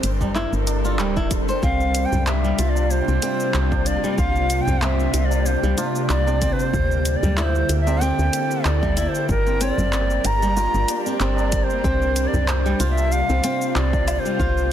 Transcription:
Already playing: G3 C4 D4 A4 A#4 C5
0.03 G1, closed hi-hat, shaker
0.21 G3, kick, tabla na, tabla tin, tabla ge, shaker
0.35 E4, clap, shaker
0.53 G1, tabla na, shaker
0.67 closed hi-hat, tabla na, shaker
0.84 F4, tabla tin, shaker
0.99 D1 G3, clap, shaker
1.17 E4, kick, tabla na, shaker
1.31 kick, closed hi-hat, shaker
1.48 C5, tabla tin, shaker
1.62 C2 C3 A#3 C4 D4 F4 G4 F5, kick, shaker
1.80 shaker
1.95 closed hi-hat, shaker
2.05 G5
2.12 C2, tabla tin, tabla ge, shaker
2.27 E5, clap, shaker
2.44 G3, shaker
2.59 C2 F4, closed hi-hat, shaker
2.70 D5
2.75 tabla na, tabla tin, shaker
2.91 C5, shaker
3.08 C2 C4, shaker
3.22 C4, closed hi-hat, shaker
3.40 shaker
3.54 C2, clap, shaker
3.72 kick, tabla na, tabla tin, shaker
3.86 D5, closed hi-hat, shaker
4.03 G3, tabla tin, shaker
4.18 C2 F4 F5, kick, shaker
4.36 shaker
4.50 closed hi-hat, shaker
4.61 G5
4.67 C2 C4, tabla tin, tabla ge, shaker
4.82 C4 E5, clap, shaker
5.00 shaker
5.14 C2, closed hi-hat, shaker
5.25 D5
5.31 tabla na, tabla tin, shaker
5.46 C5, shaker
5.63 C2 G3, shaker
5.78 F4, closed hi-hat, tabla na, shaker
5.94 tabla tin, shaker
6.09 C2 D5, clap, shaker
6.27 C4, tabla na, shaker
6.42 C4, kick, closed hi-hat, shaker
6.52 C5
6.59 tabla tin, shaker
6.74 D2 D3 E4 G4 A4, kick, shaker
6.91 shaker
7.05 closed hi-hat, shaker
7.16 D5
7.23 D2 G3, tabla tin, tabla ge, shaker
7.37 E4 D5, clap, shaker
7.43 C5
7.55 shaker
7.69 D2, closed hi-hat, shaker
7.81 E5
7.87 C4, tabla na, tabla tin, shaker
8.01 C4 G5, shaker
8.19 D2, shaker
8.33 closed hi-hat, shaker
8.51 shaker
8.65 D2 D5, clap, shaker
8.82 G3, kick, tabla na, tabla tin, shaker
8.97 E4, closed hi-hat, shaker
9.08 C5
9.15 tabla tin, shaker
9.29 G1 G3 D4 G4 A#4, kick, shaker
9.47 C4, shaker
9.61 C4 D5, closed hi-hat, shaker
9.78 G1, tabla tin, tabla ge, shaker
9.93 clap, shaker
10.10 shaker
10.25 G1 A#5, closed hi-hat, shaker
10.42 G3, tabla na, tabla tin, shaker
10.57 F4, shaker
10.74 G1, shaker
10.88 closed hi-hat, tabla na, shaker
11.05 C4, tabla tin, shaker
11.20 G1 C4 D5, clap, shaker
11.37 tabla na, shaker
11.52 kick, closed hi-hat, shaker
11.64 C5
11.70 tabla tin, shaker
11.84 C2 C3 C4 F4, kick, shaker
12.02 shaker
12.16 closed hi-hat, shaker
12.27 D5
12.33 C2, tabla tin, tabla ge, shaker
12.48 C5, clap, shaker
12.66 G3, shaker
12.80 C2 F4, closed hi-hat, shaker
12.91 E5
12.97 tabla na, tabla tin, shaker
13.12 F5, shaker
13.29 C2 C4, shaker
13.44 C4, closed hi-hat, shaker
13.61 shaker
13.75 C2 D5, clap, shaker
13.93 kick, tabla na, tabla tin, shaker
14.08 closed hi-hat, low woodblock, shaker
14.19 C5
14.25 G3, tabla tin, shaker
14.39 C2 C4 F4, kick, shaker
14.57 shaker

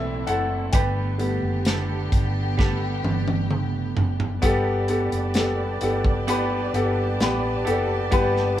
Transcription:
Already playing: B1 A2 E3 A3 C4 E4 A4 B4 C5 E5 G5 A5
0.27 F#1 A3 C4 E4 A4 F#5, closed hi-hat
0.72 G1 D3 G3 B3 D4 G4 A4 B4 G5, kick, closed hi-hat
1.18 G3 A3 B3, closed hi-hat
1.43 F#1
1.65 B3 D4 G4 A4, snare, closed hi-hat
2.12 G1, kick, closed hi-hat
2.57 G3 A3 B3 D4 G4 A4, kick, snare
3.04 G1, high tom
3.28 high tom
3.50 mid tom
3.97 F#1, floor tom
4.20 floor tom
4.42 G1 G3 B3 D4 G4 A4 B4 D5 A5, kick, closed hi-hat
4.88 B3 G4 A4, closed hi-hat
5.12 F#1, closed hi-hat
5.34 B3 G4 A4, snare, closed hi-hat
5.81 G1 B3 G4 A4, closed hi-hat
6.05 kick
6.27 G3 B3 D4 G4 A4 B4, closed hi-hat
6.73 G1 B3 G4 A4, closed hi-hat
7.20 A1 B3 G4 B4, snare, closed hi-hat
7.65 F#1 B3 D4 G4 A4, closed hi-hat
8.11 G1 G3 B3 D4 G4 A4 B4, kick, closed hi-hat
8.36 snare

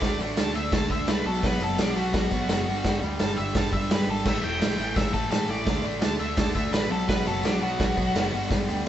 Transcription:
Already playing: D5
0.01 D2 D3 A3 D4, kick, snare, open hi-hat
0.12 tambourine
0.19 A1 D3 A3 D4, tambourine
0.29 tambourine
0.36 D2 D3 A3 D4 A5, snare, open hi-hat, tambourine
0.55 D2 D3 A3 D4 E5, tambourine
0.72 D2 D3 A3 D4 A5, kick, snare, open hi-hat
0.82 tambourine
0.90 D2 D3 A3 D4 E5, kick, tambourine
1.00 tambourine
1.07 C2 D3 A3 D4 B4, snare, open hi-hat, tambourine
1.25 B1 B2 F#3 B3 A4, tambourine
1.34 tambourine
1.43 B1 B2 F#3 B3 B4, kick, snare, open hi-hat
1.52 tambourine
1.60 F#1 B2 F#3 B3 A4, tambourine
1.70 tambourine
1.77 B1 B2 F#3 B3 D4, snare, open hi-hat, tambourine
1.95 B1 B2 F#3 B3 F#4, tambourine
2.13 B1 B2 F#3 B3, kick, snare, open hi-hat
2.24 tambourine
2.30 B1 B2 F#3 B3, kick, tambourine
2.42 tambourine
2.48 F#1 B2 F#3 B3, snare, open hi-hat, tambourine
2.59 tambourine
2.67 G1 G2 D3 G3, tambourine
2.76 tambourine
2.84 G1 G2 D3 G3, kick, snare, open hi-hat
2.93 tambourine
3.02 D2 G2 D3 G3, tambourine
3.12 tambourine
3.19 G1 G2 D3 G3 A5, snare, open hi-hat, tambourine
3.30 tambourine
3.37 G1 G2 D3 G3 E5, tambourine
3.47 tambourine
3.55 G1 G2 D3 G3 A5, kick, snare, open hi-hat
3.65 tambourine
3.73 G1 G2 D3 G3 E5, kick, tambourine
3.83 tambourine
3.90 G2 D3 G3 B4, snare, open hi-hat, tambourine
4.07 G#1 G2 D3 G3 A4, tambourine
4.18 tambourine
4.25 A1 A2 E3 A3 E5, kick, snare, crash
4.36 tambourine
4.43 E1 A2 E3 A3 G5, tambourine
4.53 tambourine
4.60 A1 A2 E3 A3, snare, open hi-hat, tambourine
4.71 tambourine
4.77 A1 A2 E3 A3, tambourine
4.95 A1 A2 E3 A3 E5, kick, snare, open hi-hat
5.12 A1 A2 E3 A3 A4, kick, tambourine
5.23 tambourine
5.30 A2 E3 A3 A4, snare, open hi-hat, tambourine
5.48 A1 A2 E3 A3 D5, tambourine
5.58 tambourine
5.65 D2 D3 A3 D4, kick, snare, open hi-hat
5.76 tambourine
5.82 A1 D3 A3 D4, tambourine
5.94 tambourine
6.00 D2 D3 A3 D4 A5, snare, open hi-hat, tambourine
6.18 D2 D3 A3 D4 E5, tambourine
6.36 D2 D3 A3 D4 A5, kick, snare, open hi-hat
6.46 tambourine
6.53 D2 D3 A3 D4 E5, kick, tambourine
6.71 A1 D3 A3 D4 B4, snare, open hi-hat, tambourine
6.88 B1 B2 F#3 B3 A4, tambourine
6.99 tambourine
7.07 B1 B2 F#3 B3 B4, kick, snare, open hi-hat
7.17 tambourine
7.24 F#1 B2 F#3 B3 A4, tambourine
7.43 B1 B2 F#3 B3 D4, snare, open hi-hat, tambourine
7.52 tambourine
7.61 B1 B2 F#3 B3 F#4, tambourine
7.71 tambourine
7.79 B1 B2 F#3 B3, kick, snare, open hi-hat, tambourine
7.88 tambourine
7.96 B1 B2 F#3 B3, kick, tambourine
8.07 tambourine
8.14 F#1 B2 F#3 B3, snare, open hi-hat, tambourine
8.25 tambourine
8.32 G1 G2 D3 G3, tambourine
8.42 tambourine
8.49 G1 G2 D3 G3, kick, snare, open hi-hat
8.67 D2 G2 D3 G3, tambourine
8.78 tambourine
8.85 G2

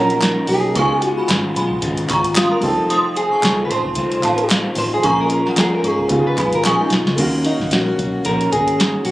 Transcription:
Already playing: A#1 F3 F#3 A#3 C#4 D#4 F4 A#4 F#5 A#5
0.10 closed hi-hat
0.22 D#3 F#3 C#4 D#4 A#4, snare, clap, closed hi-hat
0.47 B1 C#4 D#4 G#4 A#4, open hi-hat
0.74 C#2 C#3 G#3 B3 D#4 F4 G#5 C#6, kick, closed hi-hat
0.79 F4
1.02 G#3 B3 F4 F#4, closed hi-hat
1.17 G#5 B5
1.29 G#1 C#3 G#3 B3 F4, snare, clap, closed hi-hat
1.55 B1 G#3 B3 F4 G#5 B5, closed hi-hat
1.70 kick
1.82 G#1 C#3 G#3 B3 F4, kick, closed hi-hat
1.97 closed hi-hat
2.09 G#1 G#3 B3 F4 A#5 C#6, kick, clap, closed hi-hat
2.24 closed hi-hat
2.36 C#3 G#3 B3 F4 C6 D#6, snare, clap, closed hi-hat
2.51 A#4
2.60 F1 G3 A3 C4 D#4 F4 A4, kick, open hi-hat
2.65 D#3 A3 G5
2.89 F2 C3 D#3 A3 C4 F4 C6 D#6, closed hi-hat
3.15 D#3 A3 C4 F4 G#4, closed hi-hat
3.31 A5 C#6
3.42 C2 F2 C3 D#3 A3 C4 F4, snare, clap, closed hi-hat
3.65 F4 B4
3.70 A1 D#3 A3 C4 C5 A5 C6, closed hi-hat
3.84 kick
3.95 C2 D#3 A3 C4 F4, kick, closed hi-hat
4.12 closed hi-hat
4.22 A1 D#3 A3 C4 F4 F5 A5, clap, closed hi-hat
4.38 closed hi-hat
4.49 F2 C3 D#3 A3 C4 F4, snare, clap, closed hi-hat
4.75 A1 D#3 A3 C4 F4 C5, open hi-hat
4.94 G#4
5.02 A#1 A#2 F3 G#3 A#3 C#4 F4 A#5 C#6, kick, closed hi-hat
5.07 G#4
5.21 A#4
5.30 G#3 C#4 F4 A#4, closed hi-hat
5.46 F#5 A#5, snare
5.56 F2 A#2 F3 G#3 C#4 F4 G#4, snare, clap, closed hi-hat
5.75 A#4
5.83 G#2 G#3 C#4 F4 G#4 A#5 C#6, closed hi-hat
5.99 kick
6.09 C#2 C#3 G#3 B3 D#4 F4, kick, closed hi-hat
6.13 F4 G4
6.20 G#4
6.27 B4
6.37 B1 G#3 B3 F4 G#5 B5, kick, clap, closed hi-hat
6.51 G#1 A#4, closed hi-hat
6.64 A#1 C#3 G#3 B3 F4 G#4 G#5 C#6, snare, clap, closed hi-hat
6.81 D#4
6.90 B1 G#3 B3 F4, snare, closed hi-hat
7.05 C#2, snare
7.16 D#2 D#3 A#3 C#4 F#4 F5, kick, closed hi-hat, crash
7.21 F#4
7.44 A#3 C#4 D#4 F#4, closed hi-hat
7.59 G#1, kick, snare
7.71 A#1 D#3 A#3 C#4 F#4, snare, closed hi-hat
7.98 B1 A#3 C#4 F#4, kick, closed hi-hat
8.25 A#1 D#3 A#3 C#4 F#4 A#4, kick, closed hi-hat
8.41 closed hi-hat
8.52 G#1 A#3 C#4 F#4 G#4, kick, closed hi-hat
8.68 closed hi-hat
8.79 D#3 A#3 C#4 F#4, snare, closed hi-hat
9.05 B1 A#3 C#4 F#4, open hi-hat

